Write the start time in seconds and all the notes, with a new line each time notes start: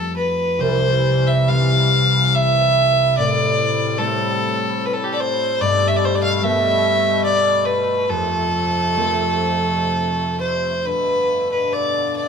Already playing: F2 G3 A3 F4 A4
0.17 B4
0.59 C2 C3 E3 G3 C5
1.27 E5
1.48 E3 G3 C4 F5
2.35 E5
3.17 A2 C4 D5
3.98 G3 A3 C4 A4
4.86 B4
4.93 A4
5.04 G4
5.12 A4 D5
5.20 C5
5.60 G2 B2 A3 D5
5.88 E5
5.96 D5
6.05 C5
6.15 D5
6.23 F5
6.36 F5
6.41 G3 A3 B3 E5
7.24 D5
7.65 B4
8.09 F2 C3 A4
8.96 F3 A3 C4
10.40 C5
10.82 G2 B2 D3 B4
11.52 B4
11.73 D5
12.16 D5